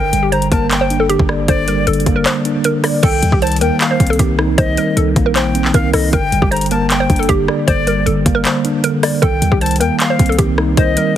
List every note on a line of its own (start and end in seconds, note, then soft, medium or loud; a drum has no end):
0.00 0.12 G1 loud
0.00 0.31 D3 medium
0.00 0.21 A#4 loud
0.00 0.30 G5 loud
0.13 0.50 G1 loud
0.13 1.10 G3 medium
0.13 closed hi-hat medium
0.23 0.30 G4 medium
0.32 1.08 D3 medium
0.32 0.47 C5 medium
0.32 0.51 A#5 medium
0.32 closed hi-hat medium
0.42 closed hi-hat medium
0.52 1.17 G1 loud
0.52 1.48 A#3 loud
0.52 0.79 A#4 medium
0.52 0.70 A5 medium
0.52 kick medium
0.52 closed hi-hat medium
0.71 1.07 G5 medium
0.71 clap loud
0.71 closed hi-hat medium
0.81 0.95 C5 medium
0.90 1.87 D4 medium
0.90 closed hi-hat medium
1.00 1.07 A4 medium
1.09 1.47 D3 medium
1.09 1.46 G4 loud
1.09 closed hi-hat medium
1.19 1.47 G1 loud
1.19 kick loud
1.29 2.26 D5 medium
1.29 cross-stick medium
1.48 1.86 G1 loud
1.48 1.86 D3 medium
1.48 1.63 C5 medium
1.48 1.85 D5 loud
1.48 kick loud
1.48 closed hi-hat medium
1.68 2.65 G3 medium
1.68 1.83 A#4 medium
1.68 closed hi-hat medium
1.87 2.06 G1 loud
1.87 2.63 D3 medium
1.87 2.14 A4 medium
1.87 closed hi-hat medium
1.93 closed hi-hat medium
2.00 closed hi-hat soft
2.06 2.25 G1 loud
2.06 3.03 A#3 medium
2.06 kick medium
2.06 closed hi-hat medium
2.16 2.23 A#4 medium
2.26 2.62 C5 medium
2.26 clap loud
2.26 closed hi-hat medium
2.45 3.03 D4 medium
2.45 closed hi-hat medium
2.64 3.03 D3 medium
2.64 2.79 A#4 medium
2.64 closed hi-hat medium
2.84 3.03 D5 medium
2.84 2.99 D5 medium
2.84 cross-stick medium
2.84 open hi-hat medium
3.03 3.22 C2 loud
3.03 3.41 D#3 medium
3.03 3.30 A4 loud
3.03 3.40 G5 loud
3.03 kick loud
3.03 closed hi-hat medium
3.03 crash loud
3.23 3.32 D#2 loud
3.23 4.19 G3 medium
3.23 closed hi-hat medium
3.32 3.63 C2 loud
3.32 3.40 G4 medium
3.32 kick loud
3.42 4.18 D#3 medium
3.42 3.57 C5 medium
3.42 3.60 A5 medium
3.42 closed hi-hat soft
3.47 closed hi-hat medium
3.52 closed hi-hat medium
3.56 closed hi-hat medium
3.61 3.70 D#2 loud
3.61 4.58 A#3 medium
3.61 3.89 A#4 medium
3.61 3.80 G5 medium
3.61 closed hi-hat medium
3.81 4.17 F5 medium
3.81 clap loud
3.81 closed hi-hat medium
3.91 4.05 C5 medium
4.00 4.19 C2 loud
4.00 4.97 C4 medium
4.00 kick medium
4.00 closed hi-hat medium
4.07 4.17 A4 medium
4.07 closed hi-hat medium
4.13 closed hi-hat soft
4.19 4.57 C2 loud
4.19 4.57 D#3 medium
4.19 4.56 G4 medium
4.19 kick medium
4.19 closed hi-hat medium
4.39 5.36 D#4 medium
4.39 cross-stick loud
4.58 4.77 C2 loud
4.58 4.96 D#3 loud
4.58 4.73 C5 loud
4.58 4.95 D#5 loud
4.58 kick loud
4.58 closed hi-hat medium
4.77 5.74 G3 medium
4.77 4.92 A#4 medium
4.77 closed hi-hat medium
4.97 5.15 C2 loud
4.97 5.73 D#3 medium
4.97 5.24 A4 medium
4.97 closed hi-hat medium
5.16 5.72 A#1 loud
5.16 6.13 A#3 loud
5.16 kick medium
5.16 closed hi-hat medium
5.26 5.33 A#4 medium
5.36 5.72 C5 medium
5.36 5.72 G5 medium
5.36 clap loud
5.36 closed hi-hat medium
5.55 6.13 C4 medium
5.55 closed hi-hat medium
5.65 clap medium
5.74 5.93 C2 loud
5.74 6.13 D#3 medium
5.74 5.89 A#4 medium
5.74 5.93 F5 medium
5.74 kick medium
5.74 closed hi-hat medium
5.94 6.12 C2 loud
5.94 6.13 D#4 medium
5.94 6.08 A4 medium
5.94 6.12 D#5 medium
5.94 cross-stick medium
5.94 open hi-hat medium
6.13 6.32 G1 loud
6.13 6.51 D3 medium
6.13 6.40 A#4 loud
6.13 6.49 G5 loud
6.13 kick loud
6.13 closed hi-hat medium
6.32 6.42 G1 loud
6.32 7.29 G3 medium
6.32 closed hi-hat medium
6.42 7.07 G1 loud
6.42 6.49 G4 medium
6.42 kick loud
6.51 7.28 D3 medium
6.51 6.66 C5 medium
6.51 6.70 A#5 medium
6.51 closed hi-hat soft
6.56 closed hi-hat medium
6.61 closed hi-hat medium
6.66 closed hi-hat medium
6.71 7.68 A#3 loud
6.71 6.98 A#4 medium
6.71 6.89 A5 medium
6.71 closed hi-hat medium
6.90 7.27 G5 medium
6.90 clap loud
6.90 closed hi-hat medium
7.00 7.15 C5 medium
7.10 7.28 G1 loud
7.10 8.06 D4 medium
7.10 kick medium
7.10 closed hi-hat medium
7.16 7.27 A4 medium
7.16 closed hi-hat medium
7.23 closed hi-hat soft
7.29 7.48 G1 loud
7.29 7.66 D3 medium
7.29 7.65 G4 medium
7.29 kick loud
7.29 closed hi-hat medium
7.48 8.45 D5 medium
7.48 cross-stick loud
7.67 8.05 G1 loud
7.67 8.05 D3 medium
7.67 7.82 C5 loud
7.67 8.04 D5 loud
7.67 kick loud
7.67 closed hi-hat medium
7.87 8.84 G3 medium
7.87 8.02 A#4 medium
7.87 closed hi-hat medium
8.06 8.25 G1 loud
8.06 8.83 D3 medium
8.06 8.34 A4 medium
8.06 closed hi-hat medium
8.26 8.44 G1 loud
8.26 9.23 A#3 loud
8.26 kick medium
8.26 closed hi-hat medium
8.35 8.42 A#4 medium
8.45 8.81 C5 medium
8.45 clap loud
8.45 closed hi-hat medium
8.65 9.23 D4 medium
8.65 closed hi-hat medium
8.84 9.23 D3 medium
8.84 8.99 A#4 medium
8.84 closed hi-hat medium
9.03 9.23 D5 medium
9.03 9.18 D5 medium
9.03 cross-stick loud
9.03 open hi-hat medium
9.22 9.41 C2 loud
9.22 9.60 D#3 medium
9.22 9.50 A4 loud
9.22 9.59 G5 loud
9.22 kick loud
9.22 closed hi-hat medium
9.42 9.51 D#2 loud
9.42 10.39 G3 medium
9.42 closed hi-hat medium
9.52 9.82 C2 loud
9.52 9.59 G4 medium
9.52 kick loud
9.61 10.37 D#3 medium
9.61 9.76 C5 medium
9.61 9.80 A5 medium
9.61 closed hi-hat soft
9.66 closed hi-hat medium
9.71 closed hi-hat medium
9.76 closed hi-hat medium
9.80 9.90 D#2 loud
9.80 10.77 A#3 medium
9.80 10.08 A#4 medium
9.80 9.99 G5 medium
9.80 closed hi-hat medium
10.00 10.36 F5 medium
10.00 clap loud
10.00 closed hi-hat medium
10.10 10.25 C5 medium
10.19 10.38 C2 loud
10.19 11.16 C4 medium
10.19 kick medium
10.19 closed hi-hat medium
10.26 10.37 A4 medium
10.26 closed hi-hat medium
10.32 closed hi-hat soft
10.38 10.76 C2 loud
10.38 10.76 D#3 medium
10.38 10.75 G4 medium
10.38 kick medium
10.38 closed hi-hat medium
10.58 11.17 D#4 medium
10.58 cross-stick loud
10.77 10.96 C2 loud
10.77 11.15 D#3 loud
10.77 10.92 C5 loud
10.77 11.14 D#5 loud
10.77 kick loud
10.77 closed hi-hat medium
10.97 11.17 G3 medium
10.97 11.12 A#4 medium
10.97 closed hi-hat medium